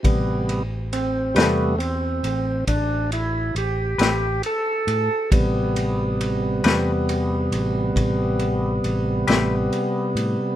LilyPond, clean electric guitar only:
\new Staff \with { instrumentName = "Clean electric guitar" } { \time 12/8 \key a \minor \tempo 4. = 45 r4. <a c' g' b'>8 r2 r8 <a c' g' b'>8 r4 | r4. <a c' g' b'>8 r2 r8 <a c' g' b'>8 r4 | }